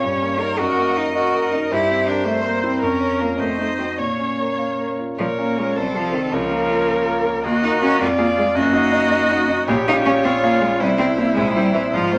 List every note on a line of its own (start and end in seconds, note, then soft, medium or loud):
0.00 0.58 G2 soft
0.00 0.41 C#4 medium
0.00 0.57 C#5 medium
0.04 0.59 C#5 medium
0.22 0.52 A#3 soft
0.39 0.58 D#4 soft
0.39 0.60 A#4 medium
0.39 0.58 A#4 soft
0.58 1.68 F#2 medium
0.58 0.99 F#4 medium
0.58 1.15 A#4 medium
0.58 1.73 D#5 medium
0.79 1.08 A#3 medium
0.97 1.14 D#4 medium
0.97 1.27 A#4 soft
1.14 1.51 F#4 medium
1.14 1.74 A#4 medium
1.14 1.46 D#5 soft
1.35 1.65 A#4 medium
1.52 1.59 D#4 medium
1.52 1.72 D#4 soft
1.70 2.80 G2 medium
1.70 2.09 E4 medium
1.70 2.27 G4 medium
1.70 2.81 C5 medium
1.90 2.20 C4 soft
2.08 2.26 D4 medium
2.08 2.39 A#4 soft
2.25 2.46 A3 medium
2.25 2.82 C5 medium
2.25 2.57 E5 soft
2.45 2.63 A#3 medium
2.45 2.75 A#4 medium
2.64 2.85 C4 medium
2.64 2.83 E4 soft
2.81 3.38 F2 medium
2.81 3.23 C#4 medium
2.81 3.36 A#4 medium
2.81 3.42 A#4 medium
3.00 3.32 C#4 soft
3.20 3.40 A#3 medium
3.20 3.38 F4 soft
3.20 3.38 A#4 soft
3.39 3.97 F2 soft
3.39 3.59 A3 medium
3.39 3.98 C5 medium
3.39 4.01 D#5 medium
3.58 3.67 A3 medium
3.58 3.91 D#4 soft
3.78 3.87 C4 medium
3.78 3.97 F#4 soft
3.78 3.97 C5 soft
3.99 5.15 A#2 soft
3.99 4.97 A#3 medium
3.99 4.87 C#5 medium
3.99 4.99 C#5 soft
4.19 4.51 C#4 soft
4.39 4.71 A#4 soft
4.59 4.91 F5 soft
4.79 5.11 A#4 soft
4.99 5.19 F4 soft
5.18 5.38 A#2 medium
5.18 5.26 F3 medium
5.18 5.78 A#4 medium
5.18 5.78 C#5 medium
5.38 5.59 A#3 medium
5.38 5.55 C#4 soft
5.38 5.55 F4 soft
5.38 5.56 A#4 soft
5.58 5.76 G#3 medium
5.58 5.75 C#4 soft
5.58 5.75 F4 soft
5.58 5.75 A#4 soft
5.76 5.94 C2 medium
5.76 5.98 G3 medium
5.76 6.35 A4 medium
5.76 6.35 C5 medium
5.95 6.15 F3 medium
5.95 6.11 C4 soft
5.95 6.11 A4 medium
6.12 6.34 D#3 medium
6.12 6.30 C4 soft
6.12 6.30 A4 soft
6.32 6.50 C#2 medium
6.32 7.26 F3 medium
6.32 7.48 A#4 medium
6.32 7.44 C#5 medium
6.50 6.68 A#3 medium
6.50 6.68 F4 medium
6.50 6.68 A#4 medium
6.70 6.86 A#3 medium
6.70 6.86 F4 medium
6.70 6.87 A#4 medium
6.88 7.04 A#3 soft
6.88 7.05 F4 soft
6.88 7.05 A#4 medium
7.06 7.23 A#3 medium
7.06 7.23 F4 medium
7.06 7.24 A#4 medium
7.24 7.42 A#3 medium
7.24 7.42 F4 medium
7.24 7.42 A#4 medium
7.45 7.63 D#2 medium
7.45 7.62 A#3 loud
7.45 8.03 F#4 medium
7.45 8.02 D#5 medium
7.63 7.80 A#3 medium
7.63 7.71 D#4 loud
7.63 7.80 F#4 medium
7.63 7.81 A#4 medium
7.81 7.98 A#3 medium
7.81 7.99 C#4 loud
7.81 7.99 F#4 medium
7.81 7.99 A#4 medium
8.00 8.18 F2 medium
8.00 8.07 C4 loud
8.00 8.56 F4 medium
8.00 8.57 D5 medium
8.18 8.26 A#3 loud
8.18 8.35 F4 medium
8.18 8.35 G#4 medium
8.18 8.36 D5 medium
8.37 8.45 G#3 medium
8.37 8.54 F4 medium
8.37 8.54 G#4 medium
8.37 8.54 D5 medium
8.55 8.73 F#2 medium
8.55 9.47 A#3 loud
8.55 9.66 F#4 medium
8.55 9.67 D#5 medium
8.73 8.90 D#4 medium
8.73 8.90 F#4 medium
8.73 8.91 D#5 medium
8.92 9.09 D#4 medium
8.92 9.09 F#4 medium
8.92 9.10 D#5 medium
9.11 9.28 D#4 medium
9.11 9.28 F#4 medium
9.11 9.28 D#5 medium
9.31 9.47 D#4 medium
9.31 9.47 F#4 medium
9.31 9.47 D#5 medium
9.48 9.65 D#4 medium
9.48 9.66 F#4 medium
9.48 9.66 D#5 medium
9.67 9.86 A#1 medium
9.67 9.75 A#3 loud
9.67 10.26 G4 medium
9.67 10.82 C#5 medium
9.87 10.04 C#4 medium
9.87 9.95 D#4 loud
9.87 10.04 F4 medium
9.87 10.04 F5 medium
10.05 10.13 C#4 loud
10.05 10.22 C#4 medium
10.05 10.22 F4 medium
10.05 10.23 F5 medium
10.24 10.31 C4 loud
10.24 10.41 C#4 medium
10.24 10.82 F4 medium
10.24 10.41 F4 medium
10.24 10.41 F5 medium
10.43 10.62 A#3 loud
10.43 10.59 C#4 medium
10.43 10.60 F4 medium
10.43 10.60 F5 medium
10.61 10.80 G#3 loud
10.61 10.79 C#4 medium
10.61 10.79 F4 medium
10.61 10.79 F5 medium
10.80 10.98 C2 medium
10.80 10.88 G3 loud
10.80 11.96 E4 medium
10.80 11.36 C5 medium
10.98 11.06 C4 loud
10.98 11.16 C4 medium
10.98 11.16 E4 medium
10.98 11.16 C5 medium
11.17 11.33 A#3 loud
11.17 11.34 C4 medium
11.17 11.35 E4 medium
11.17 11.35 C5 medium
11.34 11.55 A#1 medium
11.34 11.53 G#3 loud
11.34 11.92 C5 medium
11.53 11.73 G3 loud
11.53 11.73 C4 medium
11.53 11.73 E4 medium
11.53 11.73 C5 medium
11.74 11.81 E3 medium
11.74 11.91 C4 medium
11.74 11.92 E4 medium
11.74 11.92 C5 medium
11.93 12.12 G#2 medium
11.93 12.14 F3 loud
11.93 12.18 F4 medium
11.93 12.18 C5 medium
12.13 12.18 A#3 medium
12.13 12.18 C4 medium
12.13 12.18 F4 soft
12.13 12.18 C5 medium